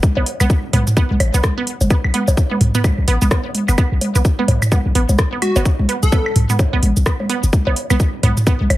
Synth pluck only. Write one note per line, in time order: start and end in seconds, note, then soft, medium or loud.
0.17 0.21 B3 medium
0.40 0.45 B3 loud
0.73 0.79 B3 medium
0.97 1.03 B3 loud
1.34 1.38 B3 medium
1.58 1.62 B3 loud
1.90 1.96 B3 medium
2.14 2.20 B3 loud
2.51 2.55 B3 medium
2.75 2.79 B3 loud
3.08 3.14 B3 loud
3.22 3.24 B3 medium
3.31 3.40 B3 medium
3.69 3.73 B3 medium
3.78 3.84 B3 loud
4.15 4.20 B3 medium
4.39 4.43 B3 loud
4.72 4.78 B3 medium
4.95 5.01 B3 loud
5.33 5.37 B3 medium
5.56 5.60 B3 loud
5.89 5.95 B3 medium
6.12 6.18 B3 loud
6.50 6.54 B3 medium
6.73 6.77 B3 loud
7.06 7.12 B3 medium
7.29 7.36 B3 loud
7.67 7.71 B3 medium
7.90 7.94 B3 loud
8.23 8.29 B3 medium
8.47 8.53 B3 loud